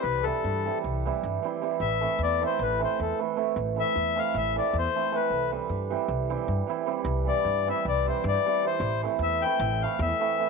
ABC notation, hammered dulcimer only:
X:1
M:9/8
L:1/8
Q:3/8=103
K:C
V:1 name="Hammered dulcimer"
z [E,G,CE] z [E,G,CE] z [E,G,CE] z [E,G,CE] [E,G,CE] | z [E,A,CE] z [E,A,CE] z [E,A,CE] z [E,A,CE] [E,A,CE] | z [E,A,CE] z [E,A,CE] z [E,A,CE] z [E,A,CE] [E,A,CE] | z [E,G,CE] z [E,G,CE] z [E,G,CE] z [E,G,CE] [E,G,CE] |
z [E,G,CE] z [E,G,CE] z [E,G,CE] z [E,G,CE] [E,G,CE] | z [E,A,CE] z [E,A,CE] z [E,A,CE] z [E,A,CE] [E,A,CE] |]